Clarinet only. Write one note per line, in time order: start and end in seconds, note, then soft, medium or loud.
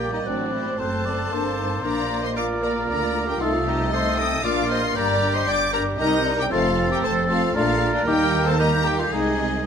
0.00 0.12 G4 medium
0.14 0.19 D#4 medium
0.26 0.53 D4 soft
0.53 0.65 C4 soft
0.80 1.82 A4 medium
1.84 2.23 A#4 medium
2.24 2.36 C5 medium
2.36 2.65 D5 medium
2.63 2.89 A#4 medium
2.90 3.29 A#4 medium
3.28 3.40 G4 medium
3.41 3.52 F4 medium
3.67 3.92 D#4 medium
3.93 4.18 C5 medium
4.19 4.46 D#5 medium
4.44 4.70 D5 medium
4.71 4.82 C5 medium
4.97 5.37 A#4 medium
5.36 5.48 C5 medium
5.49 5.73 D5 medium
5.74 5.85 A#4 medium
6.01 6.38 A#4 medium
6.39 6.45 G4 medium
6.52 6.90 F4 medium
6.92 7.06 G4 medium
7.05 7.29 A4 medium
7.30 7.55 F4 medium
7.57 7.94 F4 medium
7.94 8.07 D4 medium
8.07 8.47 G4 medium
8.46 8.60 A4 medium
8.59 8.87 A#4 medium
8.85 8.98 G4 medium
8.99 9.05 F4 medium
9.12 9.47 D#4 medium